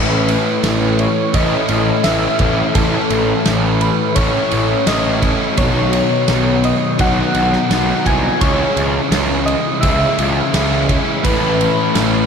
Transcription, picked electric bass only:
0, 0, Header, 1, 2, 480
1, 0, Start_track
1, 0, Tempo, 706714
1, 1871, Time_signature, 4, 2, 24, 8
1, 8328, End_track
2, 0, Start_track
2, 0, Title_t, "Picked electric bass"
2, 0, Program_c, 0, 34
2, 0, Note_on_c, 0, 33, 81
2, 243, Note_off_c, 0, 33, 0
2, 432, Note_on_c, 0, 33, 85
2, 720, Note_off_c, 0, 33, 0
2, 912, Note_on_c, 0, 33, 87
2, 1056, Note_off_c, 0, 33, 0
2, 1150, Note_on_c, 0, 33, 76
2, 1294, Note_off_c, 0, 33, 0
2, 1393, Note_on_c, 0, 33, 82
2, 1536, Note_off_c, 0, 33, 0
2, 1629, Note_on_c, 0, 33, 75
2, 1773, Note_off_c, 0, 33, 0
2, 1870, Note_on_c, 0, 33, 78
2, 2014, Note_off_c, 0, 33, 0
2, 2109, Note_on_c, 0, 33, 82
2, 2253, Note_off_c, 0, 33, 0
2, 2355, Note_on_c, 0, 33, 78
2, 2641, Note_off_c, 0, 33, 0
2, 2830, Note_on_c, 0, 33, 89
2, 2974, Note_off_c, 0, 33, 0
2, 3073, Note_on_c, 0, 33, 82
2, 3216, Note_off_c, 0, 33, 0
2, 3312, Note_on_c, 0, 33, 81
2, 3599, Note_off_c, 0, 33, 0
2, 3791, Note_on_c, 0, 35, 85
2, 4078, Note_off_c, 0, 35, 0
2, 4269, Note_on_c, 0, 35, 81
2, 4558, Note_off_c, 0, 35, 0
2, 4751, Note_on_c, 0, 35, 94
2, 4895, Note_off_c, 0, 35, 0
2, 4991, Note_on_c, 0, 35, 77
2, 5135, Note_off_c, 0, 35, 0
2, 5234, Note_on_c, 0, 35, 86
2, 5377, Note_off_c, 0, 35, 0
2, 5476, Note_on_c, 0, 36, 83
2, 5619, Note_off_c, 0, 36, 0
2, 5717, Note_on_c, 0, 37, 76
2, 5860, Note_off_c, 0, 37, 0
2, 5953, Note_on_c, 0, 37, 83
2, 6097, Note_off_c, 0, 37, 0
2, 6188, Note_on_c, 0, 37, 88
2, 6478, Note_off_c, 0, 37, 0
2, 6679, Note_on_c, 0, 37, 94
2, 6822, Note_off_c, 0, 37, 0
2, 6920, Note_on_c, 0, 37, 74
2, 7062, Note_off_c, 0, 37, 0
2, 7157, Note_on_c, 0, 37, 80
2, 7445, Note_off_c, 0, 37, 0
2, 7641, Note_on_c, 0, 33, 85
2, 7928, Note_off_c, 0, 33, 0
2, 8120, Note_on_c, 0, 33, 79
2, 8328, Note_off_c, 0, 33, 0
2, 8328, End_track
0, 0, End_of_file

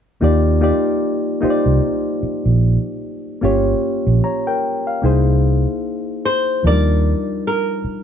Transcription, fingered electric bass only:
0, 0, Header, 1, 3, 480
1, 0, Start_track
1, 0, Key_signature, -3, "major"
1, 0, Tempo, 802139
1, 133, Time_signature, 4, 2, 24, 8
1, 4807, End_track
2, 0, Start_track
2, 0, Title_t, "Fingered electric bass"
2, 0, Program_c, 0, 33
2, 133, Note_on_c, 0, 39, 83
2, 422, Note_off_c, 0, 39, 0
2, 992, Note_on_c, 0, 36, 57
2, 1069, Note_off_c, 0, 36, 0
2, 1470, Note_on_c, 0, 34, 71
2, 1654, Note_off_c, 0, 34, 0
2, 2053, Note_on_c, 0, 31, 93
2, 2237, Note_off_c, 0, 31, 0
2, 2433, Note_on_c, 0, 34, 75
2, 2510, Note_off_c, 0, 34, 0
2, 3013, Note_on_c, 0, 36, 81
2, 3380, Note_off_c, 0, 36, 0
2, 3976, Note_on_c, 0, 39, 85
2, 4265, Note_off_c, 0, 39, 0
2, 4807, End_track
3, 0, Start_track
3, 0, Title_t, "Muted fingered electric bass strokes"
3, 855, Note_on_c, 9, 29, 38
3, 915, Note_off_c, 9, 29, 0
3, 1333, Note_on_c, 9, 29, 40
3, 1393, Note_off_c, 9, 29, 0
3, 4693, Note_on_c, 9, 29, 37
3, 4753, Note_off_c, 9, 29, 0
3, 4807, End_track
0, 0, End_of_file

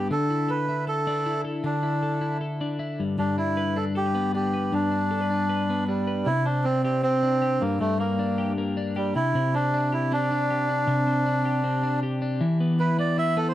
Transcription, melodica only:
0, 0, Header, 1, 2, 480
1, 0, Start_track
1, 0, Tempo, 384615
1, 129, Time_signature, 4, 2, 24, 8
1, 16898, End_track
2, 0, Start_track
2, 0, Title_t, "Melodica"
2, 0, Program_c, 0, 22
2, 146, Note_on_c, 0, 69, 97
2, 622, Note_on_c, 0, 71, 91
2, 631, Note_off_c, 0, 69, 0
2, 1062, Note_off_c, 0, 71, 0
2, 1098, Note_on_c, 0, 69, 100
2, 1764, Note_off_c, 0, 69, 0
2, 2062, Note_on_c, 0, 62, 76
2, 2967, Note_off_c, 0, 62, 0
2, 3977, Note_on_c, 0, 62, 85
2, 4198, Note_off_c, 0, 62, 0
2, 4219, Note_on_c, 0, 64, 90
2, 4698, Note_on_c, 0, 69, 79
2, 4710, Note_off_c, 0, 64, 0
2, 4805, Note_off_c, 0, 69, 0
2, 4952, Note_on_c, 0, 67, 108
2, 5390, Note_off_c, 0, 67, 0
2, 5436, Note_on_c, 0, 67, 92
2, 5910, Note_on_c, 0, 62, 92
2, 5919, Note_off_c, 0, 67, 0
2, 7293, Note_off_c, 0, 62, 0
2, 7331, Note_on_c, 0, 55, 76
2, 7813, Note_on_c, 0, 64, 112
2, 7828, Note_off_c, 0, 55, 0
2, 8055, Note_on_c, 0, 62, 90
2, 8062, Note_off_c, 0, 64, 0
2, 8286, Note_on_c, 0, 60, 91
2, 8302, Note_off_c, 0, 62, 0
2, 8510, Note_off_c, 0, 60, 0
2, 8528, Note_on_c, 0, 60, 82
2, 8753, Note_off_c, 0, 60, 0
2, 8772, Note_on_c, 0, 60, 101
2, 9492, Note_on_c, 0, 58, 84
2, 9516, Note_off_c, 0, 60, 0
2, 9717, Note_off_c, 0, 58, 0
2, 9736, Note_on_c, 0, 57, 97
2, 9959, Note_off_c, 0, 57, 0
2, 9974, Note_on_c, 0, 58, 76
2, 10645, Note_off_c, 0, 58, 0
2, 11184, Note_on_c, 0, 55, 86
2, 11404, Note_off_c, 0, 55, 0
2, 11424, Note_on_c, 0, 64, 105
2, 11910, Note_on_c, 0, 62, 105
2, 11914, Note_off_c, 0, 64, 0
2, 12397, Note_off_c, 0, 62, 0
2, 12398, Note_on_c, 0, 64, 93
2, 12633, Note_off_c, 0, 64, 0
2, 12644, Note_on_c, 0, 62, 101
2, 14976, Note_off_c, 0, 62, 0
2, 15971, Note_on_c, 0, 71, 89
2, 16192, Note_off_c, 0, 71, 0
2, 16217, Note_on_c, 0, 74, 91
2, 16435, Note_off_c, 0, 74, 0
2, 16456, Note_on_c, 0, 76, 126
2, 16691, Note_on_c, 0, 69, 93
2, 16698, Note_off_c, 0, 76, 0
2, 16830, Note_off_c, 0, 69, 0
2, 16831, Note_on_c, 0, 72, 73
2, 16898, Note_off_c, 0, 72, 0
2, 16898, End_track
0, 0, End_of_file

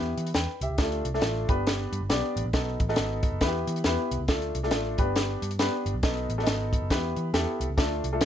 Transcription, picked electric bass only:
0, 0, Header, 1, 2, 480
1, 0, Start_track
1, 0, Tempo, 437318
1, 856, Time_signature, 4, 2, 24, 8
1, 9055, End_track
2, 0, Start_track
2, 0, Title_t, "Picked electric bass"
2, 0, Program_c, 0, 34
2, 0, Note_on_c, 0, 40, 88
2, 143, Note_off_c, 0, 40, 0
2, 191, Note_on_c, 0, 52, 83
2, 348, Note_off_c, 0, 52, 0
2, 381, Note_on_c, 0, 40, 81
2, 502, Note_off_c, 0, 40, 0
2, 671, Note_on_c, 0, 36, 84
2, 749, Note_off_c, 0, 36, 0
2, 768, Note_on_c, 0, 37, 69
2, 845, Note_off_c, 0, 37, 0
2, 863, Note_on_c, 0, 38, 91
2, 1106, Note_off_c, 0, 38, 0
2, 1151, Note_on_c, 0, 36, 85
2, 1309, Note_off_c, 0, 36, 0
2, 1339, Note_on_c, 0, 33, 81
2, 1584, Note_off_c, 0, 33, 0
2, 1635, Note_on_c, 0, 31, 93
2, 2038, Note_off_c, 0, 31, 0
2, 2112, Note_on_c, 0, 43, 82
2, 2190, Note_off_c, 0, 43, 0
2, 2205, Note_on_c, 0, 31, 78
2, 2284, Note_off_c, 0, 31, 0
2, 2299, Note_on_c, 0, 35, 82
2, 2422, Note_off_c, 0, 35, 0
2, 2593, Note_on_c, 0, 33, 81
2, 2672, Note_off_c, 0, 33, 0
2, 2685, Note_on_c, 0, 34, 78
2, 2765, Note_off_c, 0, 34, 0
2, 2783, Note_on_c, 0, 35, 94
2, 3027, Note_off_c, 0, 35, 0
2, 3076, Note_on_c, 0, 33, 93
2, 3233, Note_off_c, 0, 33, 0
2, 3265, Note_on_c, 0, 32, 84
2, 3588, Note_off_c, 0, 32, 0
2, 3642, Note_on_c, 0, 30, 74
2, 3741, Note_on_c, 0, 40, 90
2, 3758, Note_off_c, 0, 30, 0
2, 3987, Note_off_c, 0, 40, 0
2, 4032, Note_on_c, 0, 52, 83
2, 4191, Note_off_c, 0, 52, 0
2, 4223, Note_on_c, 0, 40, 76
2, 4345, Note_off_c, 0, 40, 0
2, 4516, Note_on_c, 0, 36, 83
2, 4594, Note_off_c, 0, 36, 0
2, 4605, Note_on_c, 0, 37, 72
2, 4685, Note_off_c, 0, 37, 0
2, 4703, Note_on_c, 0, 38, 86
2, 4948, Note_off_c, 0, 38, 0
2, 4993, Note_on_c, 0, 36, 81
2, 5180, Note_off_c, 0, 36, 0
2, 5180, Note_on_c, 0, 33, 88
2, 5426, Note_off_c, 0, 33, 0
2, 5471, Note_on_c, 0, 31, 91
2, 5875, Note_off_c, 0, 31, 0
2, 5951, Note_on_c, 0, 43, 79
2, 6233, Note_off_c, 0, 43, 0
2, 6430, Note_on_c, 0, 31, 80
2, 6510, Note_off_c, 0, 31, 0
2, 6520, Note_on_c, 0, 35, 89
2, 6602, Note_off_c, 0, 35, 0
2, 6623, Note_on_c, 0, 35, 93
2, 6867, Note_off_c, 0, 35, 0
2, 6906, Note_on_c, 0, 33, 90
2, 7067, Note_off_c, 0, 33, 0
2, 7103, Note_on_c, 0, 32, 89
2, 7426, Note_off_c, 0, 32, 0
2, 7486, Note_on_c, 0, 30, 75
2, 7578, Note_on_c, 0, 40, 94
2, 7595, Note_off_c, 0, 30, 0
2, 7824, Note_off_c, 0, 40, 0
2, 7868, Note_on_c, 0, 52, 86
2, 8027, Note_off_c, 0, 52, 0
2, 8051, Note_on_c, 0, 40, 81
2, 8177, Note_off_c, 0, 40, 0
2, 8345, Note_on_c, 0, 36, 88
2, 8426, Note_off_c, 0, 36, 0
2, 8444, Note_on_c, 0, 37, 81
2, 8523, Note_off_c, 0, 37, 0
2, 8535, Note_on_c, 0, 38, 89
2, 8781, Note_off_c, 0, 38, 0
2, 8824, Note_on_c, 0, 36, 89
2, 8985, Note_off_c, 0, 36, 0
2, 9010, Note_on_c, 0, 33, 87
2, 9055, Note_off_c, 0, 33, 0
2, 9055, End_track
0, 0, End_of_file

